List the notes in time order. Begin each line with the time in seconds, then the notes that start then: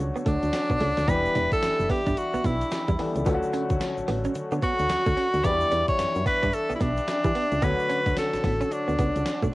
Already playing: D3 F#3 A3 D4 F#4 C#5
0.00 C#2
0.16 B3, shaker
0.26 D2 A3 D4, kick, closed hi-hat, tambourine, shaker
0.43 D2, closed hi-hat, shaker
0.53 muted clean electric guitar stroke, snare, closed hi-hat, tambourine, shaker
0.70 B1 B3, kick, shaker
0.80 C#2 A3, open hi-hat, tambourine
0.97 D2, snare, closed hi-hat, shaker
1.07 E1 E3 G3 B3 D4 G4 B4 E5, kick, closed hi-hat, tambourine, shaker
1.25 shaker
1.35 E1 D4, closed hi-hat, tambourine, shaker
1.51 A4, muted clean electric guitar stroke, kick, closed hi-hat, shaker
1.63 F#1, muted clean electric guitar stroke, snare, closed hi-hat, tambourine, shaker
1.79 F#1, shaker
1.89 B3 G4, kick, open hi-hat, tambourine
2.06 G1 D4, kick, closed hi-hat, shaker
2.17 F#4, muted clean electric guitar stroke, closed hi-hat, shaker
2.34 B1 B3, shaker
2.44 B1 B3 E4, kick, closed hi-hat, tambourine, shaker
2.61 closed hi-hat, shaker
2.71 muted clean electric guitar stroke, snare, closed hi-hat, tambourine, shaker
2.88 E2 G3, kick, shaker
2.99 E3 G3 B3 D4 A4, open hi-hat, tambourine
3.15 C#2, closed hi-hat, shaker
3.25 D2 D3 F#3 A3 B3 C#4 F4 F#4 A4 C#5, kick, closed hi-hat, tambourine, shaker
3.34 F#4
3.43 shaker
3.53 C#4, closed hi-hat, tambourine, shaker
3.70 D2, muted clean electric guitar stroke, kick, closed hi-hat, shaker
3.81 muted clean electric guitar stroke, snare, closed hi-hat, tambourine, shaker
3.97 A1, shaker
4.08 A1 B3, open hi-hat, tambourine
4.24 C#4, closed hi-hat, shaker
4.35 D3, muted clean electric guitar stroke, closed hi-hat, shaker
4.52 D3 B3, shaker
4.62 B3 F#4, kick, closed hi-hat, tambourine, shaker
4.79 D2, closed hi-hat, shaker
4.89 D2, muted clean electric guitar stroke, snare, closed hi-hat, tambourine, shaker
5.06 D2 A3, kick, shaker
5.17 C#4, open hi-hat, tambourine
5.33 D2, closed hi-hat, shaker
5.43 E2 E3 G3 B3 D4 G4 D5 E5, kick, closed hi-hat, tambourine, shaker
5.61 shaker
5.71 E2 D4, closed hi-hat, tambourine, shaker
5.88 C#5, muted clean electric guitar stroke, kick, closed hi-hat, shaker
5.99 F#2, muted clean electric guitar stroke, snare, closed hi-hat, tambourine, shaker
6.15 F#2, shaker
6.26 B3 B4, kick, open hi-hat, tambourine
6.42 G2 D4, kick, closed hi-hat, shaker
6.53 A4, muted clean electric guitar stroke, closed hi-hat, shaker
6.70 B1 B3, shaker
6.75 E4
6.80 B1 B3 D4, kick, closed hi-hat, tambourine, shaker
6.97 closed hi-hat, shaker
7.08 muted clean electric guitar stroke, snare, closed hi-hat, tambourine, shaker
7.24 E3 G3, kick, shaker
7.35 B3, open hi-hat, tambourine
7.52 C#2, closed hi-hat, shaker
7.62 D2 D3 F#3 A3 B3 D4 F#4 B4 C#5, kick, closed hi-hat, tambourine, shaker
7.79 shaker
7.89 C#4, closed hi-hat, tambourine, shaker
8.06 D2, muted clean electric guitar stroke, kick, closed hi-hat, shaker
8.17 A4, muted clean electric guitar stroke, snare, closed hi-hat, tambourine, shaker
8.34 A1, snare, shaker
8.44 A1 B3, kick, open hi-hat, tambourine
8.61 C#4, closed hi-hat, shaker
8.71 D4, muted clean electric guitar stroke, closed hi-hat, shaker
8.88 D2 B3, shaker
8.99 C#2 B3, kick, closed hi-hat, tambourine, shaker
9.16 C#2, closed hi-hat, shaker
9.26 muted clean electric guitar stroke, snare, closed hi-hat, tambourine, shaker
9.42 B1 A3, kick, shaker